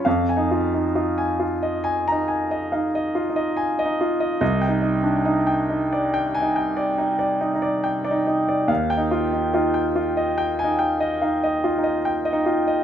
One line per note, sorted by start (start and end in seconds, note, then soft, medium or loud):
0.05 4.37 F2 medium
0.05 0.40 F5 medium
0.29 0.63 G#5 medium
0.37 0.72 D#4 medium
0.51 0.85 F4 medium
0.74 0.94 D#4 soft
0.95 1.42 D#4 soft
0.95 1.30 F4 medium
1.18 1.53 G#5 soft
1.40 1.75 F4 medium
1.63 1.98 D#5 soft
1.84 2.20 G#5 medium
2.08 2.29 A#5 medium
2.12 2.59 D#4 soft
2.28 2.63 G#5 soft
2.51 2.85 D#5 medium
2.72 3.18 D#4 soft
2.72 2.93 F5 soft
2.95 3.28 D#5 medium
3.15 3.49 F4 soft
3.30 3.75 D#4 soft
3.36 3.70 D#5 medium
3.57 3.91 G#5 soft
3.79 4.12 D#5 medium
3.85 4.30 D#4 medium
4.01 4.33 F4 medium
4.20 4.39 D#5 medium
4.41 8.65 C2 medium
4.41 4.75 D#5 medium
4.61 4.96 G5 medium
4.68 4.81 D#4 medium
4.82 5.17 D#4 soft
5.03 5.26 D4 soft
5.25 5.60 D#4 medium
5.47 5.82 G5 soft
5.70 6.04 D#4 soft
5.92 6.26 D5 medium
6.14 6.47 G5 medium
6.35 6.56 G#5 medium
6.42 6.88 D#4 soft
6.56 6.90 G5 medium
6.77 7.12 D5 medium
6.98 7.39 D#4 soft
6.98 7.20 D#5 soft
7.19 7.54 D5 medium
7.41 7.53 D#4 soft
7.55 8.01 D#4 soft
7.62 7.96 D5 medium
7.84 8.18 G5 medium
8.04 8.39 D5 medium
8.11 8.25 D#4 medium
8.27 8.61 D#4 medium
8.49 8.70 D5 soft
8.68 12.84 D#2 medium
8.68 9.03 F5 medium
8.90 9.24 G5 medium
8.97 9.31 D#4 medium
9.11 9.45 F4 medium
9.32 9.52 D#4 soft
9.53 9.98 D#4 medium
9.53 9.87 F4 medium
9.74 10.07 G5 medium
9.96 10.29 F4 medium
10.17 10.50 D#5 soft
10.38 10.70 G5 medium
10.59 10.79 G#5 medium
10.64 11.09 D#4 medium
10.79 11.12 G5 medium
11.00 11.34 D#5 medium
11.22 11.67 D#4 soft
11.22 11.42 F5 soft
11.43 11.77 D#5 medium
11.64 11.98 F4 medium
11.78 12.23 D#4 soft
11.84 12.18 D#5 medium
12.05 12.39 G5 medium
12.25 12.59 D#5 medium
12.33 12.77 D#4 medium
12.46 12.80 F4 medium
12.67 12.84 D#5 medium